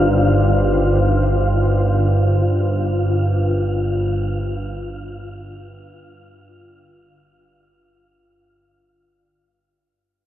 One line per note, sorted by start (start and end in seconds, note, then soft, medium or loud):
0.00 8.30 G1 medium
0.00 8.30 G2 medium
0.00 8.21 G3 medium
0.00 8.21 D#4 medium
0.00 8.24 F4 medium
0.00 8.21 G4 medium
0.00 8.22 C5 medium
0.00 8.23 F5 medium